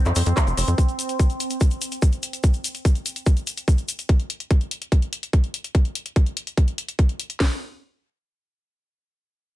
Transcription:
Already playing: C4
0.05 F2, clap, closed hi-hat, cabasa
0.16 F2, cross-stick, open hi-hat, cabasa
0.26 F2, closed hi-hat, cabasa
0.37 kick, cross-stick, clap, closed hi-hat, cabasa
0.47 F1, closed hi-hat, cabasa
0.57 F1, cross-stick, open hi-hat, cabasa
0.68 F2, closed hi-hat, cabasa
0.78 kick, closed hi-hat, cabasa
0.88 closed hi-hat, cabasa
0.99 closed hi-hat, cabasa
1.09 closed hi-hat, cabasa
1.20 kick, closed hi-hat, cabasa
1.30 closed hi-hat, cabasa
1.40 closed hi-hat, cabasa
1.50 closed hi-hat, cabasa
1.60 kick, closed hi-hat, cabasa
1.71 closed hi-hat, cabasa
1.81 closed hi-hat, cabasa
1.92 closed hi-hat, cabasa
2.02 kick, closed hi-hat, cabasa
2.12 closed hi-hat, cabasa
2.23 closed hi-hat, cabasa
2.33 closed hi-hat, cabasa
2.43 kick, closed hi-hat, cabasa
2.53 closed hi-hat, cabasa
2.64 closed hi-hat, cabasa
2.75 closed hi-hat, cabasa
2.85 kick, closed hi-hat, cabasa
2.95 closed hi-hat, cabasa
3.06 closed hi-hat, cabasa
3.16 closed hi-hat, cabasa
3.26 kick, closed hi-hat, cabasa
3.37 closed hi-hat, cabasa
3.47 closed hi-hat, cabasa
3.57 closed hi-hat, cabasa
3.68 kick, closed hi-hat, cabasa
3.78 closed hi-hat, cabasa
3.89 closed hi-hat, cabasa
3.99 closed hi-hat, cabasa
4.09 kick, closed hi-hat
4.20 closed hi-hat
4.30 closed hi-hat
4.40 closed hi-hat
4.51 kick, closed hi-hat
4.61 closed hi-hat
4.71 closed hi-hat
4.82 closed hi-hat
4.92 kick, closed hi-hat
5.02 closed hi-hat
5.13 closed hi-hat
5.23 closed hi-hat
5.33 kick, closed hi-hat
5.44 closed hi-hat
5.54 closed hi-hat
5.64 closed hi-hat
5.75 kick, closed hi-hat
5.85 closed hi-hat
5.95 closed hi-hat
6.06 closed hi-hat
6.16 kick, closed hi-hat
6.26 closed hi-hat
6.37 closed hi-hat
6.47 closed hi-hat
6.57 kick, closed hi-hat
6.68 closed hi-hat
6.78 closed hi-hat
6.88 closed hi-hat
6.99 kick, closed hi-hat
7.09 closed hi-hat
7.20 closed hi-hat
7.30 closed hi-hat
7.40 kick, snare, open hi-hat

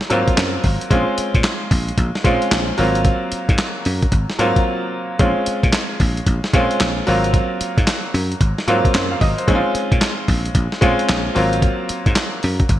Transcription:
Already playing: F#3 A#3 C4 F4
0.01 snare
0.10 G#2 F#3 A#3 C4 F4, closed hi-hat
0.28 kick, closed hi-hat
0.37 F#2, snare, clap, closed hi-hat
0.64 G#1, kick, open hi-hat
0.81 closed hi-hat
0.90 A#1 G#3 C4 C#4 F4, kick, closed hi-hat
1.18 muted slap bass stroke, closed hi-hat
1.34 A#2, kick, closed hi-hat
1.44 snare, clap, closed hi-hat
1.71 A#1, kick, open hi-hat
1.89 closed hi-hat
1.98 A#1, kick, closed hi-hat
2.15 snare
2.24 A#2 G#3 C4 C#4 F4, kick, closed hi-hat
2.42 closed hi-hat
2.51 A#1, snare, clap, closed hi-hat
2.78 G#1 F#3 A#3 C4 F4, open hi-hat
2.95 closed hi-hat
3.05 kick, closed hi-hat
3.32 muted slap bass stroke, closed hi-hat
3.49 G#2, kick, closed hi-hat
3.58 snare, clap, closed hi-hat
3.85 F#2, open hi-hat
4.02 kick, closed hi-hat
4.12 G#1, kick, closed hi-hat
4.30 snare
4.39 G#2 F#3 A#3 C4 F4, closed hi-hat
4.56 kick, closed hi-hat
5.19 A#1 G#3 C4 C#4 F4, kick, closed hi-hat
5.46 muted slap bass stroke, closed hi-hat
5.63 A#2, kick, closed hi-hat
5.73 snare, clap, closed hi-hat
6.00 A#1, kick, open hi-hat
6.17 closed hi-hat
6.26 A#1, kick, closed hi-hat
6.44 snare
6.53 A#2 G#3 C4 C#4 F4, kick, closed hi-hat
6.71 closed hi-hat
6.80 A#1, snare, clap, closed hi-hat
7.07 G#1 F#3 A#3 C4 F4, open hi-hat
7.24 closed hi-hat
7.34 kick, closed hi-hat
7.61 muted slap bass stroke, closed hi-hat
7.78 G#2, kick, closed hi-hat
7.87 snare, clap, closed hi-hat
8.14 F#2, open hi-hat
8.32 closed hi-hat
8.41 G#1, kick, closed hi-hat
8.58 snare
8.67 G#2 F#3 A#3 C4 F4, closed hi-hat
8.85 kick, closed hi-hat
8.94 F#2 C5, snare, clap, closed hi-hat
9.11 F5
9.21 G#1 D#5, kick, open hi-hat
9.38 C5, closed hi-hat
9.48 A#1 G#3 C4 C#4 D#4, kick, closed hi-hat
9.55 F4
9.75 muted slap bass stroke, closed hi-hat
9.92 A#2, kick, closed hi-hat
10.01 snare, clap, closed hi-hat
10.28 A#1, kick, open hi-hat
10.46 closed hi-hat
10.55 A#1, kick, closed hi-hat
10.72 snare
10.81 A#2 G#3 C4 C#4 F4, kick, closed hi-hat
10.99 closed hi-hat
11.09 A#1, snare, clap, closed hi-hat
11.35 G#1 F#3 A#3 C4 F4, open hi-hat
11.53 closed hi-hat
11.62 kick, closed hi-hat
11.89 muted slap bass stroke, closed hi-hat
12.06 G#2, kick, closed hi-hat
12.16 snare, clap, closed hi-hat
12.43 F#2, open hi-hat
12.60 kick, closed hi-hat
12.69 G#1, kick, closed hi-hat

